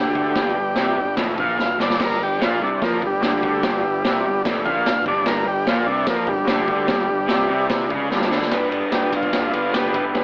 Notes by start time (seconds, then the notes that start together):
Already playing: D2 D3 G4 B4 E5
0.13 G4 B4 E5, kick
0.34 G1 G2 G4 B4 D5, kick, snare, open hi-hat
0.53 G1 G4 B4 D5
0.58 G2
0.75 C2 C3 G4 B4 D5, snare, open hi-hat
0.95 G1 G2 G4 B4 D5
1.16 F1 F2 G4 B4 E5, kick, snare, open hi-hat
1.38 A#1 A#2 G4 B4 E5 F5, kick
1.57 G1 G2 G4 B4 E5, snare
1.78 G1 G2 G4 B4 D5, snare
1.82 D5
1.90 snare
1.99 G1 G2 G4 B4 D5, kick, snare, open hi-hat, crash
2.04 A#4
2.19 G1 G2 G4 B4 D5
2.23 G4
2.39 A#1 A#2 G4 B4 D5, snare, open hi-hat
2.44 F4
2.60 C2 C3 D4 G4 B4 E5
2.81 F2 F3 A#3 G4 B4 D5, kick, snare, open hi-hat
3.02 G1 G2 G4 B4 D5, kick
3.06 G3
3.21 D2 D3 F#3 G4, snare, open hi-hat
3.25 G3 B4 D5
3.43 G4 B4 D5, kick
3.62 G1 G2 G4 B4 D5, kick, snare, open hi-hat
3.83 G1 G2 G4 B4 E5
4.04 C2 C3 G4 B4 D5, snare, open hi-hat
4.23 G1 G2 G4 B4 D5
4.43 F1 F2 G4 B4 D5, kick, snare, open hi-hat
4.65 A#1 A#2 G4 B4 D5 F5, kick
4.84 G1 G2 G4 B4 D5, snare, open hi-hat
5.05 G1 G2 G4 B4 D5, kick
5.25 G1 G2 G4 A#4 B4 D5, kick, snare, open hi-hat
5.45 G1 G2 G4 B4 D5
5.66 A#1 A#2 F4 G4 B4 D5, snare, open hi-hat
5.86 C2 C3 D4 G4 B4 E5
6.07 F2 F3 A#3 G4 B4 D5, kick, snare, open hi-hat
6.26 G1 G2 G3 G4 B4 D5, kick
6.45 D2 D3 F#3 G4 B4, snare, open hi-hat
6.49 G3 D5
6.66 G4 B4 D5, kick
6.86 G1 G2 G4 B4 D5, kick, snare, open hi-hat
7.07 G1 G2 G4 B4 D5
7.28 C2 C3 G4 B4 D5, snare, open hi-hat
7.48 C2 C3 G4 B4 D5
7.68 G4 B4 D5, kick, snare, open hi-hat
7.89 C#2 C#3 G4 B4 D5, kick
8.10 G1 G2 G4 B4 D5, snare
8.21 snare
8.30 D2 D3 G4 B4 D5, snare
8.42 snare
8.50 G1 G3 B3 D4 G4 B4 D5, kick, snare, ride
8.70 B3 D4 G4 B4 D5, ride
8.91 G1 G3 B3 D4 G4 B4, snare, ride
8.95 D5
9.12 G1 G4 B4 D5, kick, ride
9.16 F4
9.23 kick
9.33 G1 G4 B4 D5, kick, snare, ride
9.50 E4 B4, ride
9.54 G1 B3 D4 F4 G4 B4 D5
9.73 G1 G3 B3 D4 G4 B4, snare, ride
9.78 D5
9.94 G1 B3 D4 G4 B4 E5, kick, ride
10.14 G1 G3 B3 D4 G4 B4 D5, kick, snare, ride